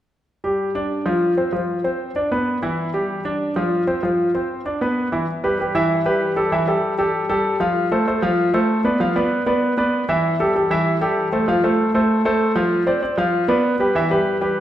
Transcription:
0.44 0.69 G3 medium
0.44 0.70 G4 medium
0.75 1.00 D4 medium
0.75 1.01 D5 medium
1.06 1.31 F3 medium
1.06 1.32 F4 medium
1.37 1.50 C4 medium
1.37 1.50 C5 medium
1.53 1.78 F3 medium
1.53 1.79 F4 medium
1.84 2.10 C4 medium
1.84 2.10 C5 medium
2.16 2.28 D4 medium
2.16 2.29 D5 medium
2.31 2.57 B3 medium
2.31 2.57 B4 medium
2.62 2.88 E3 medium
2.62 2.88 E4 medium
2.94 3.19 G3 medium
2.94 3.19 G4 medium
3.25 3.50 D4 medium
3.25 3.51 D5 medium
3.56 3.82 F3 medium
3.56 3.82 F4 medium
3.87 4.00 C4 medium
3.87 4.00 C5 medium
4.03 4.28 F3 medium
4.03 4.29 F4 medium
4.35 4.60 C4 medium
4.35 4.60 C5 medium
4.65 4.78 D4 medium
4.65 4.78 D5 medium
4.81 5.07 B3 medium
4.81 5.07 B4 medium
5.12 5.25 E3 medium
5.12 5.25 E4 medium
5.44 5.56 G3 medium
5.44 5.56 G4 medium
5.44 5.56 B4 medium
5.59 5.72 G3 medium
5.59 5.72 G4 medium
5.59 5.72 B4 medium
5.75 6.00 E3 medium
5.75 6.00 E4 medium
5.75 6.00 E5 medium
6.06 6.31 G3 medium
6.06 6.31 G4 medium
6.06 6.31 B4 medium
6.36 6.49 G3 medium
6.36 6.49 G4 medium
6.36 6.49 A4 medium
6.52 6.64 E3 medium
6.52 6.65 E4 medium
6.52 6.65 E5 medium
6.67 6.93 G3 medium
6.67 6.93 G4 medium
6.67 6.93 A4 medium
6.98 7.24 G3 medium
6.98 7.24 G4 medium
6.98 7.24 A4 medium
7.29 7.55 G3 medium
7.29 7.55 G4 medium
7.29 7.55 A4 medium
7.60 7.86 F3 medium
7.60 7.86 F4 medium
7.60 7.86 F5 medium
7.91 8.04 A3 medium
7.91 8.04 A4 medium
7.91 8.04 C5 medium
8.07 8.20 A3 medium
8.07 8.20 A4 medium
8.07 8.20 C5 medium
8.22 8.48 F3 medium
8.22 8.48 F4 medium
8.22 8.48 F5 medium
8.54 8.79 A3 medium
8.54 8.79 A4 medium
8.54 8.79 C5 medium
8.84 8.97 B3 medium
8.84 8.97 B4 medium
8.84 8.98 D5 medium
9.00 9.13 F3 medium
9.00 9.13 F4 medium
9.00 9.13 F5 medium
9.16 9.41 B3 medium
9.16 9.41 B4 medium
9.16 9.41 D5 medium
9.46 9.72 B3 medium
9.46 9.72 B4 medium
9.46 9.72 D5 medium
9.77 10.03 B3 medium
9.77 10.03 B4 medium
9.77 10.03 D5 medium
10.09 10.34 E3 medium
10.09 10.34 E4 medium
10.09 10.34 E5 medium
10.40 10.52 G3 medium
10.40 10.52 G4 medium
10.40 10.52 A4 medium
10.55 10.68 G3 medium
10.55 10.68 G4 medium
10.55 10.68 A4 medium
10.70 10.96 E3 medium
10.70 10.96 E4 medium
10.70 10.96 E5 medium
11.01 11.26 G3 medium
11.01 11.27 G4 medium
11.01 11.27 A4 medium
11.32 11.45 A3 medium
11.32 11.45 A4 medium
11.32 11.45 C5 medium
11.48 11.60 F3 medium
11.48 11.61 F4 medium
11.48 11.61 F5 medium
11.64 11.89 A3 medium
11.64 11.89 A4 medium
11.64 11.89 C5 medium
11.94 12.20 A3 medium
11.94 12.20 A4 medium
11.94 12.20 C5 medium
12.25 12.50 A3 medium
12.25 12.51 A4 medium
12.25 12.51 C5 medium
12.56 12.81 F3 medium
12.56 12.81 F4 medium
12.56 12.81 F5 medium
12.87 12.99 C4 medium
12.87 12.99 C5 medium
12.87 13.00 D5 medium
13.02 13.15 C4 medium
13.02 13.15 C5 medium
13.02 13.15 D5 medium
13.18 13.43 F3 medium
13.18 13.43 F4 medium
13.18 13.43 F5 medium
13.48 13.74 B3 medium
13.48 13.74 B4 medium
13.48 13.74 D5 medium
13.80 13.92 G3 medium
13.80 13.92 G4 medium
13.80 13.93 B4 medium
13.95 14.08 E3 medium
13.95 14.08 E4 medium
13.95 14.08 E5 medium
14.11 14.36 G3 medium
14.11 14.36 G4 medium
14.11 14.36 B4 medium
14.41 14.60 G3 medium
14.41 14.60 G4 medium
14.41 14.60 B4 medium

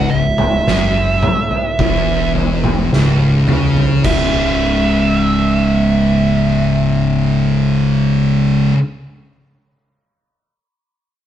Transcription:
0.00 0.10 C#2 loud
0.00 0.14 F#5 medium
0.10 0.64 C#1 medium
0.10 0.56 C#2 medium
0.10 2.32 E5 medium
0.38 floor tom medium
0.38 mid tom medium
0.67 1.19 F#1 medium
0.67 1.22 F#2 loud
0.67 snare medium
1.23 floor tom medium
1.23 mid tom medium
1.51 floor tom medium
1.79 2.88 E1 medium
1.79 2.91 E2 loud
1.79 kick loud
1.79 floor tom medium
2.35 floor tom medium
2.64 floor tom medium
2.64 mid tom medium
2.91 3.44 C#1 medium
2.91 3.47 C#2 loud
2.91 snare medium
3.48 4.01 C#2 medium
3.48 4.04 C#3 loud
3.48 mid tom medium
3.77 floor tom medium
4.04 8.71 C#1 loud
4.04 8.73 C#2 loud
4.04 8.76 G#2 medium
4.04 8.77 C#3 loud
4.04 8.71 E5 medium
4.04 kick loud
4.04 crash medium

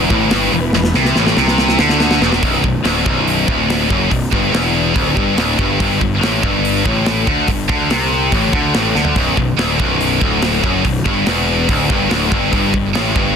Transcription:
0.00 0.10 E2 loud
0.00 2.39 E3 medium
0.00 2.39 B3 medium
0.00 2.39 E4 medium
0.00 2.39 B4 medium
0.10 0.30 A1 loud
0.10 0.31 A2 loud
0.10 kick loud
0.31 0.51 G1 medium
0.31 0.52 G2 loud
0.31 snare loud
0.31 open hi-hat medium
0.52 0.72 E1 medium
0.52 0.70 E2 medium
0.73 0.93 E1 medium
0.73 0.91 E2 medium
0.73 snare medium
0.84 snare medium
0.94 1.14 C2 loud
0.94 1.16 C3 loud
0.94 snare medium
1.05 snare medium
1.15 1.35 A1 medium
1.15 1.37 A2 loud
1.15 snare medium
1.27 snare medium
1.37 1.76 C2 medium
1.37 1.79 C3 loud
1.37 snare medium
1.48 snare medium
1.58 snare medium
1.69 snare medium
1.79 2.19 D2 loud
1.79 2.21 D3 medium
1.79 snare loud
1.89 snare medium
2.00 snare medium
2.11 snare loud
2.21 2.41 E1 medium
2.21 2.42 E2 loud
2.21 snare medium
2.32 snare loud
2.43 2.62 B0 medium
2.43 2.63 B1 medium
2.43 kick loud
2.43 open hi-hat soft
2.64 2.83 B0 medium
2.64 2.81 B1 medium
2.64 kick medium
2.84 3.04 D1 medium
2.84 3.05 D2 loud
2.84 snare loud
2.84 open hi-hat medium
3.06 3.45 B0 medium
3.06 3.47 B1 medium
3.06 kick loud
3.28 open hi-hat medium
3.48 3.87 D1 medium
3.48 3.89 D2 medium
3.48 kick loud
3.70 snare loud
3.70 open hi-hat medium
3.89 4.10 F#1 medium
3.89 4.10 F#2 medium
3.89 kick loud
4.11 4.28 B1 medium
4.11 kick medium
4.11 open hi-hat medium
4.32 4.52 G1 loud
4.32 4.53 G2 medium
4.32 kick loud
4.53 4.92 E1 medium
4.53 4.95 E2 medium
4.53 snare loud
4.53 open hi-hat soft
4.95 5.15 D1 medium
4.95 5.16 D2 medium
4.95 kick medium
4.95 open hi-hat soft
5.16 5.35 G1 medium
5.16 5.37 G2 medium
5.16 kick loud
5.36 5.56 D1 medium
5.36 5.58 D2 medium
5.36 snare medium
5.36 open hi-hat soft
5.59 5.78 G1 medium
5.59 5.79 G2 medium
5.59 kick medium
5.80 6.00 G1 medium
5.80 5.99 G2 loud
5.80 kick medium
5.80 open hi-hat soft
6.01 6.21 G1 medium
6.01 6.18 G2 medium
6.01 kick medium
6.21 6.41 A1 medium
6.21 6.43 A2 loud
6.21 snare loud
6.21 open hi-hat medium
6.43 6.82 G1 medium
6.43 6.85 G2 loud
6.43 kick loud
6.65 open hi-hat medium
6.86 7.27 A2 loud
6.86 kick loud
7.06 snare medium
7.06 open hi-hat soft
7.27 7.47 D2 medium
7.27 7.48 D3 loud
7.27 kick medium
7.47 7.68 G1 medium
7.47 7.65 G2 medium
7.47 kick medium
7.47 open hi-hat medium
7.69 7.89 D2 medium
7.69 7.89 D3 loud
7.69 kick loud
7.90 8.29 C2 medium
7.90 8.32 C3 medium
7.90 snare loud
7.90 open hi-hat medium
8.32 8.52 A1 medium
8.32 8.53 A2 loud
8.32 kick loud
8.32 open hi-hat medium
8.52 8.73 D2 loud
8.52 8.73 D3 medium
8.52 kick loud
8.74 8.94 A1 medium
8.74 8.94 A2 medium
8.74 snare loud
8.74 open hi-hat medium
8.95 9.15 D2 medium
8.95 9.16 D3 loud
8.95 snare medium
9.05 floor tom medium
9.16 9.36 B0 medium
9.16 9.37 B1 medium
9.16 kick loud
9.16 open hi-hat soft
9.16 splash medium
9.37 9.56 B0 medium
9.37 9.54 B1 medium
9.37 kick medium
9.57 9.77 D1 medium
9.57 9.79 D2 medium
9.57 snare loud
9.57 open hi-hat medium
9.79 10.19 B0 medium
9.79 10.21 B1 loud
9.79 kick loud
10.01 open hi-hat medium
10.21 10.61 D1 loud
10.21 10.63 D2 medium
10.21 kick loud
10.42 snare loud
10.42 open hi-hat medium
10.63 10.83 F#1 medium
10.63 10.84 F#2 loud
10.63 kick medium
10.85 11.04 B0 medium
10.85 11.02 B1 medium
10.85 kick medium
10.85 open hi-hat medium
11.05 11.25 G1 medium
11.05 11.26 G2 medium
11.05 kick medium
11.26 11.65 E1 medium
11.26 11.69 E2 loud
11.26 snare medium
11.26 open hi-hat medium
11.69 11.88 D1 medium
11.69 11.90 D2 medium
11.69 kick loud
11.69 open hi-hat medium
11.90 12.09 G1 loud
11.90 12.11 G2 medium
11.90 kick loud
12.10 12.30 D1 medium
12.10 12.32 D2 medium
12.10 snare medium
12.10 open hi-hat medium
12.32 12.51 G1 medium
12.32 12.53 G2 loud
12.32 kick medium
12.52 12.72 G1 medium
12.52 12.73 G2 medium
12.52 kick medium
12.52 open hi-hat soft
12.74 12.93 G1 medium
12.74 12.91 G2 medium
12.74 kick medium
12.95 13.14 A1 medium
12.95 13.15 A2 loud
12.95 snare loud
12.95 open hi-hat medium
13.16 13.36 G1 medium
13.16 13.36 G2 loud
13.16 kick loud

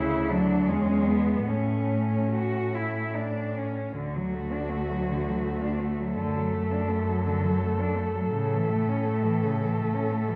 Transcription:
0.00 0.70 D2 soft
0.00 0.31 C#3 medium
0.00 0.30 E4 soft
0.29 0.70 F#3 medium
0.29 0.70 D4 soft
0.68 1.48 E2 soft
0.68 1.47 G#3 medium
0.68 1.08 C#4 soft
0.68 1.09 C#4 soft
1.07 1.49 B3 soft
1.07 1.51 B3 soft
1.48 3.69 A2 soft
1.48 3.11 A3 soft
1.48 2.24 C#4 soft
1.48 3.56 C#4 soft
2.32 2.76 F#4 soft
2.75 3.17 E4 soft
3.15 3.59 D4 soft
3.58 3.96 C#4 soft
3.94 6.18 D2 soft
3.94 4.17 D3 soft
3.94 8.31 A3 soft
3.94 6.12 F#4 soft
4.16 4.36 F#3 soft
4.34 4.54 A3 soft
4.52 4.72 D4 soft
4.71 4.92 A3 soft
4.90 5.13 F#3 soft
5.11 5.30 D3 soft
5.28 5.45 F#3 soft
5.44 5.64 A3 soft
5.62 5.82 D4 soft
5.81 6.01 A3 soft
6.00 6.17 F#3 soft
6.16 8.33 F#2 medium
6.16 6.37 D3 soft
6.16 10.36 A4 soft
6.36 6.55 F#3 soft
6.53 6.75 A3 soft
6.73 6.92 D4 soft
6.91 7.11 A3 soft
7.09 7.28 F#3 soft
7.27 7.45 D3 soft
7.44 7.64 F#3 soft
7.62 7.81 A3 soft
7.80 7.99 D4 soft
7.97 8.17 A3 soft
8.15 8.33 F#3 soft
8.33 10.36 A2 soft
8.33 8.55 C#3 medium
8.33 10.36 A3 soft
8.53 8.71 E3 soft
8.70 8.90 A3 soft
8.88 9.07 C#4 soft
9.06 9.27 A3 soft
9.25 9.44 E3 soft
9.43 9.61 C#3 soft
9.60 9.80 E3 soft
9.78 9.96 A3 soft
9.95 10.14 C#4 soft
10.13 10.31 A3 medium
10.30 10.36 E3 soft

